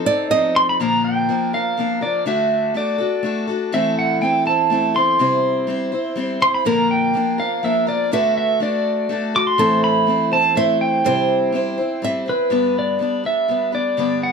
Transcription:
0.06 C4 D#4 A4 D5
0.30 F3 C4 D#4 A4 D#5
0.56 C6
0.69 B5
0.80 A#2 D3 F3 A#3 D4 A#4 A#5
1.04 G5
1.29 F3 A#3 D4 A#4
1.53 F3 A#3 D4 A#4 F5
1.77 F3 A#3 D4 A#4
2.01 F3 A#3 D4 A#4 D5
2.26 D3 A3 D4 F#4 A4 E5
2.74 A3 D4 F#4 A4 D5
2.98 D4 F#4 A4
3.23 A3 D4 F#4 A4
3.47 D4 F#4 A4
3.72 A2 E3 A3 C4 E4 A4 E5
3.99 F#5
4.21 A3 C4 E4 A4 G5
4.45 A3 C4 E4 A4 A5
4.70 A3 C4 E4 A4
4.94 A3 C4 E4 A4 C6
5.19 C3 G3 C4 E4 C5
5.67 G3 C4 E4 C5
5.92 C4 E4 C5
6.16 G3 C4 E4 C5
6.40 C4 E4 C5 C6
6.54 B5
6.65 A#2 D3 F3 A#3 D4 A#4 A#5
6.91 G5
7.13 F3 A#3 D4 A#4
7.38 F3 A#3 D4 A#4 F5
7.63 F3 A#3 D4 A#4 E5
7.87 F3 A#3 D4 A#4 D5
8.12 D3 A3 D4 F#4 A4 B4 E5
8.38 E5
8.60 A3 D4 F#4 A4 D5
9.09 A3 D4 F#4 A4
9.34 D4 F#4 A4 D6
9.47 C6
9.58 A2 E3 A3 C4 E4 A4 C5
9.84 B5
10.07 A3 C4 E4 C5
10.31 A3 C4 E4 C5 A5
10.55 A3 C4 E4 C5 E5
10.81 G5
11.04 C3 G3 C4 E4 C5
11.52 G3 C4 E4 C5
11.78 C4 E4 C5
12.02 G3 C4 E4 C5 E5
12.26 C4 E4 B4 C5
12.50 G2 D3 G3 B3 D4 B4
12.79 D5
12.99 G3 B3 D4 B4
13.24 G3 B3 D4 B4 E5
13.48 G3 B3 D4 B4
13.72 G3 B3 D4 B4 D5
13.97 G2 D3 G3 B3 D4 B4
14.23 F#5

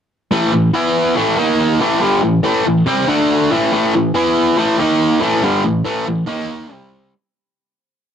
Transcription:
0.31 A2 E3 A3
0.53 A2 E3
0.73 E3 B3 E4
1.16 A2 E3 A3
1.37 D#3 A#3 D#4
1.80 A2 E3 A3
2.00 G2 D3 G3
2.22 A2 E3
2.43 A2 E3 A3
2.65 A2 E3
2.86 C3 G3 C4
3.07 D3 A3 D4
3.51 A2 E3 A3
3.72 A2 E3 A3
3.94 A2 E3
4.14 E3 B3 E4
4.57 A2 E3 A3
4.78 D#3 A#3 D#4
5.21 A2 E3 A3
5.43 G2 D3 G3
5.64 A2 E3
5.85 A2 E3 A3
6.06 A2 E3
6.27 D#3 A#3 D#4
6.71 C3 G3 C4

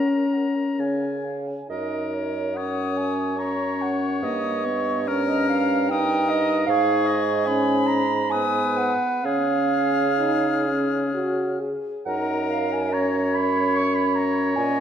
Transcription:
Already playing: C#4 A#4 F#5 A#5
0.09 A#5
0.33 F#5
0.56 A#5
0.79 C#3 F5 G#5
1.02 G#5
1.25 F5
1.48 G#5
1.69 F#2 D#4 A#4 D#5
2.14 C#5
2.55 C#4 C#5 F#5 D#6
2.97 G#5
3.37 C#4 C#5 A#5 C#6
3.82 F#5
4.21 G2 A#3 D#5 D#6
4.64 B3 C#6
5.07 C#4 A#4 C#5 F6
5.28 D#5
5.49 F5
5.89 D#4 A#4 G5 D#6
6.29 D#5
6.66 G#2 G#4 F5 C#6
7.06 D#5
7.46 C#4 G#5 B5
7.87 A#5
8.30 B3 B4 G#5 D#6
8.77 F#5
9.24 C#3 C#4 G#4 F5 F6
10.19 D#4
10.68 C#4
11.14 F#4
11.60 G#4
12.06 F#2 D#4 A#4 F#5 A#5
12.50 F5
12.72 G#5
12.92 C#4 C#5 A#5
13.34 B5
13.75 C#6
13.95 B5
14.15 A#5
14.56 A#2 C#4 D#5 G#5

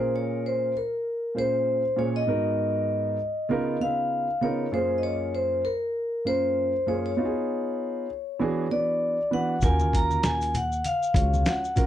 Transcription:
Already playing: A#2 C#4 F4 G#4 A#4 C5
0.16 C#5
0.46 C5
0.77 A#4
1.35 A#2 C#4 F4 G#4 C5
1.96 A#2 C#4 F4 G#4 C#5
2.16 D#5
2.27 G#2 B3 D#4 F#4 A#4
3.49 C#3 B3 D#4 F4 A#4
3.80 C#3 B3 D#4 F4 B4 F5
4.41 C#3 B3 D#4 F4 A#4 C#5
4.71 F#2 A#3 C#4 F4 G#4 C5
4.98 D#5
5.03 C#5
5.35 C5
5.65 A#4
6.25 F#2 A#3 C#4 F4 A#4 C5
6.86 F#2 A#3 C#4 F4 G#4 C#5
7.06 C#5
7.17 B3 D#4 F4 F#4
7.25 G#4
8.39 E3 B3 D4 F#4 G#4
8.70 E3 B3 D4 F#4 B4 D5
9.31 E3 B3 D4 F#4 B4 F#5
9.61 D#2 C#4 F4 F#4 A#4 G#5, kick, closed hi-hat, maracas
9.80 high conga, maracas
9.93 A#5, kick, closed hi-hat, high conga, maracas
10.11 high conga, maracas
10.23 G#5, snare, closed hi-hat, low conga, maracas
10.41 closed hi-hat, maracas
10.54 F#5, closed hi-hat, low conga, maracas
10.72 maracas
10.84 F5, closed hi-hat, high conga, maracas
11.03 maracas
11.14 C#2 C#4 F4 F#4 C#5, kick, closed hi-hat, maracas
11.34 high conga, maracas
11.46 F#5, snare, closed hi-hat, maracas
11.65 maracas
11.76 C#4 F4 F#4 A#4, kick, closed hi-hat, low conga, maracas

